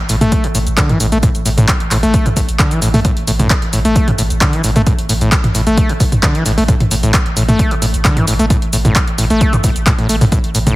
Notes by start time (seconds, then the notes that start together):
0.09 A1 A2, open hi-hat, shaker
0.21 A1 A3, closed hi-hat, mid tom, shaker
0.32 kick, closed hi-hat, shaker
0.44 A1 A2, closed hi-hat
0.55 A1 A2, open hi-hat, shaker
0.67 A1, closed hi-hat, shaker
0.77 D3, kick, clap, closed hi-hat, shaker
0.89 A1 E3, closed hi-hat, mid tom
1.00 A1 A2, open hi-hat, shaker
1.12 A1 A3, closed hi-hat, shaker
1.23 A2, kick, closed hi-hat, shaker
1.35 A1, closed hi-hat, shaker
1.46 A1 A2, open hi-hat, shaker
1.58 A1 A2, closed hi-hat, mid tom, shaker
1.68 kick, clap, closed hi-hat, shaker
1.80 A1, closed hi-hat
1.91 A1 A2, clap, open hi-hat, shaker
2.03 A1 A3, closed hi-hat, shaker
2.14 kick, closed hi-hat, shaker
2.26 A1 A2, closed hi-hat, mid tom, shaker
2.37 A1 A2, kick, open hi-hat, shaker
2.49 A1, closed hi-hat, shaker
2.59 D3, kick, clap, closed hi-hat, shaker
2.71 A1 E3, closed hi-hat, shaker
2.82 A1 A2, open hi-hat, shaker
2.94 A1 A3, mid tom, open hi-hat, shaker
3.05 A2, kick, closed hi-hat, shaker
3.17 A1, closed hi-hat
3.27 A1 A2, open hi-hat, shaker
3.39 A1 A2, closed hi-hat, mid tom, shaker
3.50 kick, clap, closed hi-hat, shaker
3.62 A1, closed hi-hat
3.73 A1 A2, open hi-hat, shaker
3.85 A1 A3, closed hi-hat, shaker
3.96 kick, closed hi-hat, shaker
4.08 A1 A2, closed hi-hat, mid tom
4.18 A1 A2, open hi-hat, shaker
4.30 A1, closed hi-hat, shaker
4.41 D3, kick, clap, closed hi-hat, shaker
4.53 A1 E3, closed hi-hat
4.64 A1 A2, open hi-hat, shaker
4.76 A1 A3, closed hi-hat, mid tom, shaker
4.87 A2, kick, closed hi-hat, shaker
4.99 A1, closed hi-hat
5.09 A1 A2, open hi-hat, shaker
5.21 A1 A2, closed hi-hat, shaker
5.32 kick, clap, closed hi-hat, shaker
5.44 A1, closed hi-hat, mid tom
5.55 A1 A2, open hi-hat, shaker
5.67 A1 A3, closed hi-hat, shaker
5.77 kick, closed hi-hat, shaker
5.89 A1 A2, closed hi-hat
6.00 A1 A2, kick, open hi-hat, shaker
6.12 A1, closed hi-hat, mid tom, shaker
6.23 D3, kick, clap, closed hi-hat, shaker
6.35 A1 E3, closed hi-hat
6.46 A1 A2, open hi-hat, shaker
6.58 A1 A3, open hi-hat, shaker
6.68 A2, kick, closed hi-hat, shaker
6.80 A1, closed hi-hat, mid tom
6.91 A1 A2, open hi-hat, shaker
7.03 A1 A2, closed hi-hat, shaker
7.14 kick, clap, closed hi-hat, shaker
7.26 A1, closed hi-hat
7.36 A1 A2, open hi-hat, shaker
7.49 A1 A3, closed hi-hat, mid tom, shaker
7.59 kick, closed hi-hat, shaker
7.71 A1 A2, closed hi-hat
7.82 A1 A2, open hi-hat, shaker
7.94 A1, closed hi-hat, shaker
8.05 D3, kick, clap, closed hi-hat, shaker
8.17 A1 E3, closed hi-hat, mid tom
8.27 A1 A2, open hi-hat, shaker
8.39 A1 A3, closed hi-hat, shaker
8.50 A2, kick, closed hi-hat, shaker
8.62 A1, closed hi-hat
8.73 A1 A2, open hi-hat, shaker
8.85 A1 A2, closed hi-hat, mid tom, shaker
8.96 kick, clap, closed hi-hat, shaker
9.08 A1, closed hi-hat
9.18 A1 A2, open hi-hat, shaker
9.30 A1 A3, closed hi-hat, shaker
9.41 kick, closed hi-hat, shaker
9.53 A1 A2, closed hi-hat, mid tom, shaker
9.64 A1 A2, kick, open hi-hat, shaker
9.76 A1, closed hi-hat, shaker
9.87 A2, kick, clap, closed hi-hat, shaker
9.98 A1 A2, closed hi-hat
10.09 A1 A3, open hi-hat, shaker
10.21 A1 A2, mid tom, open hi-hat, shaker
10.32 A2, kick, closed hi-hat, shaker
10.44 A1, closed hi-hat
10.55 A1 A2, open hi-hat, shaker
10.67 A1 A2, closed hi-hat, mid tom, shaker